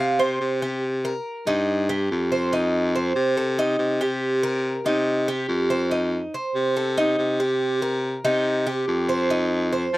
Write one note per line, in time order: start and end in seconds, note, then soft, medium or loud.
0.00 0.37 C3 loud
0.00 0.19 F5 medium
0.19 0.61 C5 medium
0.41 1.14 C3 medium
0.62 0.83 G4 medium
1.05 1.46 A#4 medium
1.47 2.06 G2 loud
1.47 1.88 D#4 medium
1.89 2.30 G4 medium
2.11 3.10 F2 loud
2.32 2.52 C5 medium
2.53 2.94 D#4 medium
2.95 3.36 C5 medium
3.16 3.75 C3 loud
3.37 3.58 A4 medium
3.59 4.00 D#4 medium
3.79 4.79 C3 loud
4.01 4.42 G4 medium
4.43 4.84 A#4 medium
4.85 5.45 C3 loud
4.85 5.27 D#4 medium
5.28 5.69 G4 medium
5.49 6.21 F2 loud
5.70 5.91 C5 medium
5.91 6.32 D#4 medium
6.34 6.75 C5 medium
6.55 7.14 C3 medium
6.77 6.97 A4 medium
6.98 7.38 D#4 medium
7.18 8.18 C3 medium
7.40 7.81 G4 medium
7.82 8.23 A#4 medium
8.25 8.84 C3 medium
8.25 8.65 D#4 medium
8.67 9.08 G4 medium
8.88 9.87 F2 medium
9.09 9.29 C5 medium
9.30 9.71 D#4 medium
9.72 9.98 C5 medium
9.93 9.98 F3 loud